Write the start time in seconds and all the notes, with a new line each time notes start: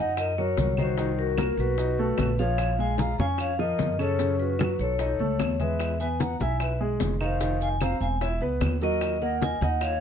Already playing: F#2
0.00 D#4 D#5 F#5
0.17 A#4 D#5, high bongo, high conga, claves, maracas
0.38 F#3 F#4 A#4 C#5, high conga
0.57 C2, high bongo, low bongo, high conga, maracas
0.77 D#3 D#4 F#4 C5, high bongo, high conga, claves, maracas
0.98 D#3 D#4, high bongo, high conga, maracas
1.18 F#4 A#4, high bongo, high conga
1.38 A#3 A#4, high bongo, high conga, claves, maracas
1.57 B1 F#4 B4, high conga, maracas
1.78 D#4 D#5, high bongo, high conga, maracas
1.98 A3 A4, high bongo, high conga
2.18 A#1, high bongo, low bongo, high conga, claves, maracas
2.38 F3 F4 C#5 F5, high bongo, maracas
2.58 high bongo, high conga, claves, maracas
2.78 G#3 G#4 F5 G#5, high bongo, high conga
2.98 F5 A#5, high bongo, high conga, maracas
3.18 F2 C#4 C#5 F5 G#5, high bongo, high conga, maracas
3.38 C#5 F5, high bongo, high conga, claves, maracas
3.59 F3 F4 A#4 D#5, high conga
3.79 F#2, high bongo, low bongo, high conga, maracas
3.99 C#3 C#4 A4 C#5, high bongo, claves, maracas
4.19 C#3 C#4, high bongo, high conga, maracas
4.40 F#4 B4, high bongo, high conga
4.59 F#3 F#4, high bongo, high conga, claves, maracas
4.79 B1 A4 C#5, high conga, maracas
4.99 D#4 D#5, high bongo, high conga, maracas
5.19 C#2 A3 A4, high bongo, high conga
5.39 E2, high bongo, low bongo, high conga, claves, maracas
5.60 G#3 G#4 B4 E5, high bongo, high conga, maracas
5.80 high bongo, high conga, claves, maracas
6.00 B3 B4 E5 G#5, high bongo, high conga, maracas
6.20 F#5 A#5, high bongo, high conga, maracas
6.40 B1 E4 E5 G#5, high bongo, high conga, maracas
6.60 B4 E5, high bongo, high conga, claves, maracas
6.81 G#3 G#4, high conga
7.00 F1, high bongo, low bongo, high conga, maracas
7.20 D#3 D#4 C5 F5, high bongo, claves, maracas
7.40 D#3 D#4, high bongo, high conga, maracas
7.61 F5 G#5, high bongo, high conga, maracas
7.81 C4 C5 F5 A#5, high bongo, high conga, claves, maracas
8.01 E1 F5 G#5, high conga, maracas
8.21 E4 C#5 E5, high bongo, high conga, maracas
8.40 C#2 B3 B4, high bongo, high conga
8.61 D#2, high bongo, low bongo, high conga, claves, maracas
8.81 F#3 F#4 A#4 D#5, high bongo, maracas
9.01 high bongo, high conga, claves, maracas
9.21 A#3 A#4 D#5 F#5, high bongo, high conga
9.42 D#5 G#5, high bongo, high conga, maracas
9.61 D#2 D#4 D#5 F#5, high bongo, high conga, maracas
9.81 C#5 F5, high bongo, high conga, claves, maracas